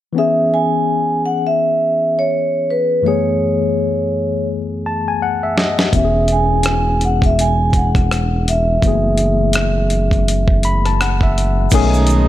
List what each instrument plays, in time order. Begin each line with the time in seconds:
0.13 tine electric piano E3 B3 C#4
0.18 tine electric piano G#4, vibraphone E5
0.54 vibraphone G#5
1.26 vibraphone F#5
1.47 vibraphone E5
2.19 vibraphone C#5
2.70 vibraphone B4
3.02 tine electric piano F#2 E3 A3
3.06 tine electric piano B3 G#4, vibraphone C#5
4.86 tine electric piano A5
5.08 tine electric piano G#5
5.22 tine electric piano F#5
5.43 tine electric piano E5
5.58 tine electric piano D#5, snare
5.79 snare
5.92 analog synth bass E1, tine electric piano E3 B3 C#4, vibraphone E5, kick, closed hi-hat
5.98 tine electric piano G4
6.05 tine electric piano G#4
6.28 closed hi-hat
6.32 vibraphone G#5
6.63 cross-stick, closed hi-hat
7.01 vibraphone F#5, closed hi-hat
7.22 vibraphone E5, kick, closed hi-hat
7.39 vibraphone G#5, closed hi-hat
7.70 vibraphone G#5, kick, closed hi-hat
7.77 vibraphone F#5
7.95 kick, cross-stick, closed hi-hat
8.11 cross-stick, closed hi-hat
8.48 vibraphone E5, closed hi-hat
8.82 analog synth bass F#1, tine electric piano E3 A3, kick, closed hi-hat
8.86 tine electric piano B3 G#4
9.18 closed hi-hat
9.53 cross-stick, closed hi-hat
9.90 closed hi-hat
10.11 kick, closed hi-hat
10.28 closed hi-hat
10.48 kick
10.63 tine electric piano B5, closed hi-hat
10.85 tine electric piano A5, cross-stick, closed hi-hat
11.01 tine electric piano F#5, cross-stick, closed hi-hat
11.21 tine electric piano E5, kick, cross-stick
11.38 closed hi-hat
11.71 analog synth bass B1, tine electric piano D#3 A3 C#4, trombone section G#3 A3 D#4, kick, closed hi-hat, crash, shaker
11.75 tine electric piano G#4
11.94 shaker
12.07 closed hi-hat, shaker